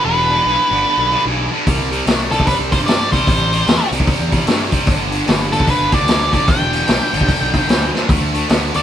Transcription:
0.05 E1 G2 D3 B4
0.30 G2 D3
0.45 B1 G2 E3
0.71 G1 G2 D3
0.86 G2 D3
0.97 B1
1.11 G2 D3
1.25 B1 G2 E3
1.52 G2 D3
1.67 C2 C3 G3, kick, open hi-hat
1.91 C3 G3, open hi-hat
2.06 C2 C3 A3, snare, open hi-hat
2.31 C2 C3 G3 A4, open hi-hat
2.40 kick
2.47 C3 G3 B4, kick, open hi-hat
2.59 C2
2.71 C3 G3 C5, kick, open hi-hat
2.80 G2
2.86 C3 A3 D5, snare, open hi-hat
3.12 C2 C3 G3 C5, kick, open hi-hat
3.27 A1 C3 G3, kick, open hi-hat
3.53 C3 G3, open hi-hat
3.66 E2 C3 A3, snare, open hi-hat
3.91 C2 C3 G3, open hi-hat
4.00 kick
4.07 C3 G3, kick, open hi-hat
4.20 E2
4.32 C3 G3, kick, open hi-hat
4.47 G2 C3 A3, snare, open hi-hat
4.72 C3 G3, kick, open hi-hat
4.87 G1 G2 D3, kick, open hi-hat
5.11 G2 D3, open hi-hat
5.26 G1 G2 E3, snare, open hi-hat
5.52 G1 G2 D3 A4, open hi-hat
5.60 kick
5.67 G2 D3 B4, kick, open hi-hat
5.81 G1
5.92 G2 D3 D5, kick, open hi-hat
6.01 D2
6.07 G2 E3, snare, open hi-hat
6.32 G1 G2 D3 D5, kick, open hi-hat
6.46 E1 G2 D3 G5, kick, open hi-hat
6.72 G2 D3, open hi-hat
6.87 B1 G2 E3, snare, open hi-hat
7.13 G1 G2 D3, open hi-hat
7.21 kick
7.28 G2 D3, kick, open hi-hat
7.41 B1
7.53 G2 D3, kick, open hi-hat
7.68 D2 G2 E3, snare, open hi-hat
7.94 G2 D3, snare
8.09 D2 D3 A3, kick, open hi-hat
8.34 D3 A3, open hi-hat
8.49 D2 D3 B3, snare, open hi-hat
8.74 D2 D3 A3 D5, open hi-hat

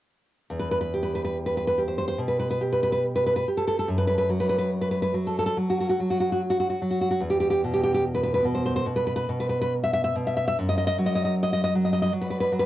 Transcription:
0.50 E2
0.60 B4
0.71 B4
0.81 B4
0.94 G4
1.03 B4
1.15 B4
1.25 B4
1.46 B4
1.57 B4
1.67 B4
1.78 G4
1.88 C5
1.98 C5
2.08 C5
2.18 B2
2.28 B4
2.39 B4
2.50 B4
2.61 G4
2.72 B4
2.83 B4
2.92 B4
3.16 B4
3.26 B4
3.36 B4
3.48 G4
3.57 A4
3.67 A4
3.79 A4
3.88 F#2
3.98 B4
4.07 B4
4.18 B4
4.29 F#3
4.40 B4
4.49 B4
4.58 B4
4.81 B4
4.91 B4
5.02 B4
5.14 F#3
5.27 A4
5.39 A4
5.46 A4
5.57 F#3
5.70 F#4
5.80 F#4
5.90 F#4
6.00 F#3
6.10 F#4
6.20 F#4
6.32 F#4
6.50 F#4
6.60 F#4
6.70 F#4
6.82 F#3
6.91 F#4
7.01 F#4
7.11 F#4
7.20 E2
7.30 G4
7.40 G4
7.50 G4
7.64 B2
7.74 G4
7.83 G4
7.94 G4
8.15 B4
8.23 B4
8.34 B4
8.44 B2
8.55 C5
8.66 C5
8.76 C5
8.86 B2
8.96 B4
9.07 B4
9.16 B4
9.29 B2
9.40 B4
9.49 B4
9.62 B4
9.84 E5
9.93 E5
10.04 E5
10.16 B2
10.27 E5
10.37 E5
10.48 E5
10.59 F#2
10.69 D#5
10.78 D#5
10.87 D#5
10.98 F#3
11.06 D#5
11.15 D#5
11.25 D#5
11.43 D#5
11.53 D#5
11.64 D#5
11.75 F#3
11.85 D#5
11.93 D#5
12.02 D#5
12.13 F#3
12.21 B4
12.30 B4
12.40 B4
12.52 F#3
12.59 B4

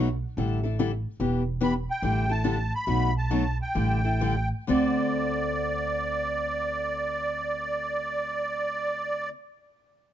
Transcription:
Already playing: B1
0.37 A1 D3 G3 D4 E4 A4
0.63 D4 E4 A4
0.79 D3 G3 D4 E4 A4
1.20 E1 E3 B3 D4 G4
1.61 E3 B3 D4 G4 B5
1.91 G5
2.02 A1 D3 G3 D4 E4 A4
2.29 D4 E4 A4 A5
2.44 D3 G3 D4 E4 A4
2.75 B5
2.87 B1 B2 F#3 A3 D#4 F#4
3.18 A5
3.30 B2 F#3 A3 D#4 F#4
3.62 G5
3.75 A1 D3 G3 D4 E4 A4
4.04 D4 E4 A4
4.21 D3 G3 D4 E4 A4
4.67 D2 D3 A3 C4 F#4 A4 D5

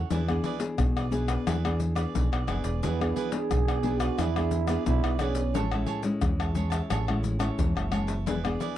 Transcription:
0.10 E2 E3 B3 D4 E4 G#4 B4 D5, pandeiro, maracas, surdo
0.28 B3 D4 G#4 B4 D5, pandeiro, tamborim, maracas, surdo
0.44 E4 G#4 B4 D5, pandeiro
0.60 B3 D4 G#4, muted cavaquinho stroke, pandeiro, maracas
0.78 B1 B2, pandeiro, tamborim, maracas, surdo
0.97 G#4 B4 D5, pandeiro, tamborim, maracas
1.11 B3 D4 E4 G#4 B4 D5, pandeiro, maracas
1.28 G#4 B4 D5, pandeiro, tamborim, maracas, surdo
1.46 E2 E3 E4 G#4 B4 D5, pandeiro, tamborim, maracas, surdo
1.64 B3 D4 G#4 B4 D5, pandeiro, tamborim, maracas, surdo
1.80 muted cavaquinho stroke, pandeiro, maracas
1.95 B3 D4 G#4 B4 D5, pandeiro, tamborim, maracas
2.14 B1 B2, pandeiro, maracas, surdo
2.32 B1 G#4 B4 D5, pandeiro, tamborim, maracas, surdo
2.47 F#1 B3 D4 E4 G#4 B4 D5, pandeiro, tamborim, surdo
2.64 E1 G#4 B4 D5, pandeiro, maracas
2.82 E2 E3 B3 E4 G#4 B4 D5, pandeiro, maracas, surdo
3.00 B3 D4 G#4 B4 D5, pandeiro, tamborim, maracas, surdo
3.16 E4 G#4 B4 D5, pandeiro, maracas
3.31 B3 D4 G#4, muted cavaquinho stroke, pandeiro, maracas
3.50 B1 B2, pandeiro, tamborim, maracas, surdo
3.68 G#4 B4 D5, pandeiro, tamborim, maracas
3.83 B3 D4 E4 G#4 B4 D5, pandeiro
4.00 F#4 G#4 B4 D5, pandeiro, tamborim, maracas, surdo
4.18 E2 E3 E4 G#4 B4 D5, pandeiro, tamborim, maracas, surdo
4.36 B3 D4 G#4 B4 D5, pandeiro, tamborim, maracas, surdo
4.51 muted cavaquinho stroke, pandeiro, maracas
4.67 B3 D4 G#4 B4 D5, pandeiro, tamborim, maracas
4.86 B1 B2 E4, pandeiro, maracas, surdo
5.04 B1 G#4 B4 D5, pandeiro, tamborim, maracas, surdo
5.19 B3 C#4 D4 E4 G#4 B4 D5, pandeiro, tamborim, maracas
5.35 G#4 B4 D5, pandeiro, maracas
5.54 A1 A2 G#3 C#4 E4 G#4 C#5 E5 A5, pandeiro, maracas, surdo
5.72 G#3 C#4 E4 C#5 E5 A5, pandeiro, tamborim, maracas, surdo
5.86 G#4 C#5 E5 A5, pandeiro
6.03 G#3 C#4 E4, muted cavaquinho stroke, pandeiro, maracas
6.21 E2 E3, pandeiro, tamborim, maracas, surdo
6.40 C#5 E5 A5, pandeiro, tamborim, maracas
6.55 G#3 C#4 E4 G#4 C#5 E5 A5, pandeiro, maracas
6.70 C#5 E5 A5, pandeiro, tamborim, maracas, surdo
6.90 A1 A2 G#4 C#5 E5 A5, pandeiro, tamborim, maracas, surdo
7.07 G#3 C#4 E4 C#5 E5 A5, pandeiro, tamborim, maracas, surdo
7.23 muted cavaquinho stroke, pandeiro, maracas
7.39 G#3 C#4 E4 C#5 E5 A5, pandeiro, tamborim, maracas
7.59 E2 E3, pandeiro, maracas, surdo
7.75 F#1 C#5 E5 A5, pandeiro, tamborim, maracas, surdo
7.91 G#3 C#4 E4 G#4 C#5 E5 A5, pandeiro, tamborim
8.07 C#5 E5 A5, pandeiro, maracas
8.26 E1 E3 B3 D4 E4 G#4 B4 D5, pandeiro, maracas, surdo
8.44 B3 D4 G#4 B4 D5, pandeiro, tamborim, maracas, surdo
8.60 E4 G#4 B4 D5, pandeiro, maracas

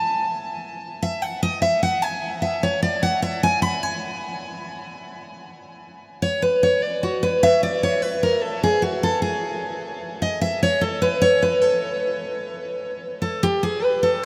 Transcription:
Already playing: A5
1.03 E5
1.22 F#5
1.43 D#5
1.62 E5
1.83 F#5
2.02 G#5
2.42 E5
2.63 C#5
2.83 D5
3.03 F#5
3.22 E5
3.43 G#5
3.62 B5
3.83 G#5
6.22 C#5
6.42 B4
6.63 C#5
6.83 D5
7.03 F#4
7.23 B4
7.43 E5
7.63 D5
7.83 C#5
8.02 B4
8.23 A#4
8.42 A4
8.63 G#4
8.82 F#4
9.03 A4
9.22 G#4
10.22 D#5
10.41 E5
10.63 C#5
10.81 A4
11.02 B4
11.22 C#5
11.42 B4
11.62 A4
13.22 A4
13.43 G4
13.63 G#4
13.84 B4
14.03 A4

